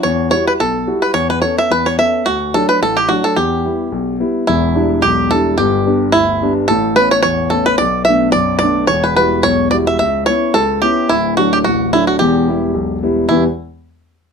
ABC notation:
X:1
M:4/4
L:1/8
Q:"Swing" 1/4=217
K:Edor
V:1 name="Five-string banjo"
c2 c B A3 B | c B c e B c e2 | F2 A B A G F A | G6 z2 |
E4 G2 A2 | G4 E3 z | A2 B c c2 A B | d2 e2 d2 d2 |
c B B2 c2 d e | e2 c2 A2 G2 | E2 F G F2 E F | G6 z2 |
E z6 z |]
V:2 name="Grand piano"
E,,2 [G,EF]2 B,,,2 [G,EF]2 | E,,2 [B,CA]2 E,,2 [B,CA]2 | D,,2 [F,A,D]2 A,,,2 [F,A,D]2 | E,,2 [G,B,E]2 B,,,2 [G,B,E]2 |
[E,,,E,,]2 [G,DE]2 B,,,2 [G,DE]2 | [G,,,G,,]2 [G,B,D]2 D,,2 [G,B,D]2 | [A,,,A,,]2 [A,B,C]2 E,,2 [A,B,C]2 | [B,,,B,,]2 [A,B,D]2 F,,2 [A,B,D]2 |
[E,,,E,,]2 [G,EF]2 B,,,2 [G,EF]2 | C,,2 [B,CE]2 C,,2 [B,CE]2 | [D,,,D,,]2 [F,A,D]2 A,,,2 [F,A,D]2 | [E,,,E,,]2 [G,B,E]2 B,,,2 [G,B,E]2 |
[E,,B,,E,G,B,] z6 z |]